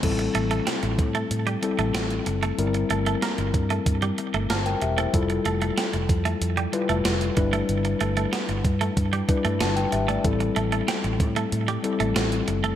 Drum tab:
CC |x---------------|----------------|----------------|----------------|
HH |xxxxxxxxxxxxxxxx|xxxxxxxxxxxxxxxx|xxxxxxxxxxxxxxxx|xxxxxxxxxxxxxxxx|
SD |----o-------o---|----o-------o---|----o-------o---|----o-------o---|
BD |o-----o---------|------o-o-------|o-----o-------o-|------o-o-o-----|

CC |----------------|
HH |xxxxxxxxxxxxxxxx|
SD |----o-------o---|
BD |o-----o---------|